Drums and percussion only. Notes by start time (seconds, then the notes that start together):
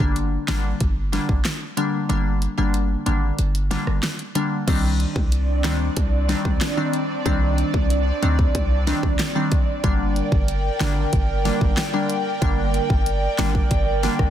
0.00 kick
0.16 closed hi-hat
0.48 snare, clap, closed hi-hat
0.80 kick, closed hi-hat
1.13 snare, closed hi-hat
1.29 kick
1.45 snare, clap, closed hi-hat
1.77 closed hi-hat
2.10 closed hi-hat
2.42 closed hi-hat
2.74 closed hi-hat
3.06 closed hi-hat
3.39 closed hi-hat
3.55 closed hi-hat
3.71 snare, closed hi-hat
3.87 cross-stick
4.03 snare, clap, closed hi-hat
4.19 closed hi-hat
4.35 closed hi-hat
4.68 kick, closed hi-hat, crash
5.00 closed hi-hat
5.16 kick
5.32 closed hi-hat
5.64 snare, clap, closed hi-hat
5.97 kick, closed hi-hat
6.29 snare, closed hi-hat
6.45 kick
6.61 snare, clap, closed hi-hat
6.93 closed hi-hat
7.26 kick, closed hi-hat
7.58 closed hi-hat
7.74 kick
7.90 closed hi-hat
8.23 closed hi-hat
8.39 kick
8.55 kick, closed hi-hat
8.87 snare, closed hi-hat
9.03 kick
9.19 snare, clap, closed hi-hat
9.52 kick, closed hi-hat
9.84 kick, closed hi-hat
10.16 closed hi-hat
10.32 kick
10.48 closed hi-hat
10.80 snare, clap, closed hi-hat
11.13 kick, closed hi-hat
11.45 snare, closed hi-hat
11.61 kick
11.77 snare, clap, closed hi-hat
12.10 closed hi-hat
12.42 kick, closed hi-hat
12.74 closed hi-hat
12.90 kick
13.06 closed hi-hat
13.38 snare, clap, closed hi-hat
13.55 kick
13.71 kick, closed hi-hat
14.03 snare, closed hi-hat
14.19 kick, cross-stick